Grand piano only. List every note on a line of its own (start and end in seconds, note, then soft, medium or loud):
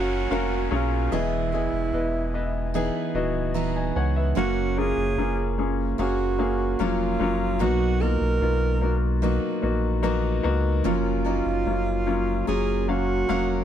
0.00 0.72 F#3 medium
0.00 0.31 C#4 medium
0.00 0.71 F4 medium
0.00 0.31 F#4 medium
0.00 0.72 G#4 medium
0.00 0.32 A#4 medium
0.00 1.14 C#5 medium
0.00 0.29 F5 medium
0.31 0.69 C#4 medium
0.31 0.70 F#4 medium
0.31 0.70 A#4 medium
0.31 0.70 F5 medium
0.71 1.10 F#3 medium
0.71 1.10 C#4 medium
0.71 1.10 F4 medium
0.71 1.10 G#4 medium
1.12 2.30 E3 soft
1.12 1.50 B3 medium
1.12 1.51 E4 medium
1.12 1.51 G#4 medium
1.12 1.51 D#5 medium
1.53 1.91 B3 medium
1.53 1.91 E4 medium
1.53 1.92 G#4 medium
1.53 1.91 D#5 soft
1.93 2.32 B3 medium
1.93 2.32 E4 medium
1.93 2.32 B4 medium
1.93 2.32 D#5 medium
2.34 2.72 B3 medium
2.34 2.73 E4 medium
2.34 2.73 B4 medium
2.34 2.73 D#5 medium
2.75 3.13 B3 medium
2.75 3.13 D#4 medium
2.75 3.13 E4 medium
2.75 3.13 G#4 medium
3.15 3.53 B3 medium
3.15 3.53 D#4 medium
3.15 3.53 E4 medium
3.15 3.54 F#4 medium
3.15 3.53 D#5 medium
3.54 3.75 E5 medium
3.54 3.74 A#5 medium
3.76 3.95 D#5 soft
3.76 3.95 G#5 medium
3.96 4.16 C#5 soft
3.96 4.15 F#5 medium
3.96 4.34 G#5 medium
4.16 4.55 B4 soft
4.16 4.55 E5 medium
4.37 4.75 A#3 medium
4.37 4.75 C#4 medium
4.37 4.75 F#4 medium
4.37 4.75 F5 medium
4.77 5.16 A#3 medium
4.77 5.16 C#4 medium
4.77 5.16 F4 medium
4.77 5.16 G#4 medium
5.18 5.56 A#3 medium
5.18 5.57 C#4 medium
5.18 5.57 F4 medium
5.18 5.57 G#4 medium
5.58 5.97 A#3 medium
5.58 5.97 C#4 soft
5.58 5.97 F4 soft
5.58 5.97 G#4 medium
5.99 6.37 A#3 medium
5.99 6.37 C#4 medium
5.99 6.38 G#4 medium
5.99 6.37 F5 medium
6.38 6.77 A#3 medium
6.38 6.78 C#4 medium
6.38 6.78 G#4 medium
6.38 6.78 F5 medium
6.80 7.19 F#3 medium
6.80 7.18 A#3 medium
6.80 7.18 C#4 medium
6.80 7.19 F4 medium
7.20 7.59 F#3 medium
7.20 7.59 A#3 medium
7.20 7.59 C#4 medium
7.20 7.59 F4 medium
7.60 8.78 B2 soft
7.60 7.99 A#3 medium
7.60 7.99 B3 medium
7.60 7.99 D#4 medium
7.60 7.99 F#4 medium
8.01 8.40 A#3 medium
8.01 8.40 B3 soft
8.01 8.40 D#4 soft
8.01 8.40 F4 medium
8.41 8.80 A#3 medium
8.41 8.80 B3 medium
8.41 8.80 D#4 soft
8.41 8.81 F4 medium
8.81 9.20 A#3 medium
8.81 9.20 B3 soft
8.81 9.21 D#4 medium
8.81 9.21 F#4 medium
9.22 9.61 A#3 medium
9.22 9.61 B3 medium
9.22 9.61 D#4 medium
9.22 9.62 F#4 medium
9.62 10.01 A#3 medium
9.62 10.01 B3 medium
9.62 10.02 D#4 medium
9.62 10.02 F#4 medium
10.03 10.42 A#3 medium
10.03 10.42 B3 medium
10.03 10.42 D#4 medium
10.03 10.42 F#4 medium
10.43 10.83 A#3 medium
10.43 10.83 B3 medium
10.43 10.83 D#4 medium
10.43 10.83 F#4 medium
10.84 11.23 F#3 medium
10.84 11.23 A#3 medium
10.84 11.24 C#4 medium
10.84 11.24 F4 medium
11.25 11.64 F#3 medium
11.25 11.64 A#3 medium
11.25 11.64 C#4 soft
11.25 11.64 D#4 medium
11.66 12.05 F#3 medium
11.66 12.05 A#3 soft
11.66 12.05 C#4 soft
11.66 12.05 F4 medium
12.06 12.45 F#3 medium
12.06 12.45 A#3 medium
12.06 12.45 C#4 medium
12.06 12.45 F4 medium
12.47 12.86 F#3 medium
12.47 12.86 A#3 soft
12.47 12.86 C#4 medium
12.47 12.86 F4 medium
12.88 13.26 F#3 medium
12.88 13.27 A#3 medium
12.88 13.27 C#4 medium
12.88 13.27 F5 medium
13.28 13.64 F#3 medium
13.28 13.64 A#3 medium
13.28 13.64 C#4 medium
13.28 13.64 F5 medium